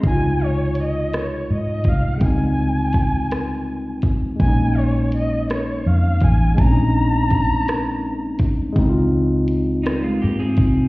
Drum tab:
HH |x-xx-x|x-xx-x|x-xx-x|x-xx-x|
SD |---r--|---r--|---r--|---r--|
BD |o----o|o-o--o|o----o|o-o--o|

HH |x-xx-x|
SD |---r--|
BD |o----o|